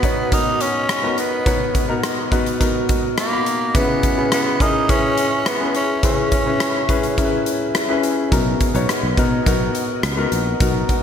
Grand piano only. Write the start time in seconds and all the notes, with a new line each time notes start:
Already playing: B2 B3 D#4 F#4 A#4
0.03 B3 D#4 F#4 C#5
0.31 B3 D#4 F#4 A#4
1.03 B3 D#4 F#4 A#4
1.46 B2 B3 D#4 F#4 C#5
1.89 B3 D#4 F#4 A#4
2.31 B3 D#4 F#4 B4
2.60 B3 D#4 F#4 A#4
3.31 B2 D#4 F#4 B5
3.74 C#3 C#4 E4 G#4 B4
4.17 C#4 E4 G#4 B4
4.60 C#4 E4 G#4 A#4
4.88 C#4 E4 G#4 B4
5.60 C#4 E4 G#4 B4
6.03 C#3 C#4 E4 G#4 B4
6.46 C#4 E4 G#4 B4
6.89 C#4 E4 G#4 B4
7.17 C#4 E4 G#4 A#4
7.25 B4
7.89 C#4 E4 G#4 B4
8.32 B2 B3 D#4 F#4 A#4
8.74 B3 D#4 F#4 C#5
9.17 B3 D#4 F#4 A#4
9.46 B3 D#4 F#4 A#4
10.17 B3 D#4 F#4 A#4
10.60 B2 B3 D#4 F#4 A#4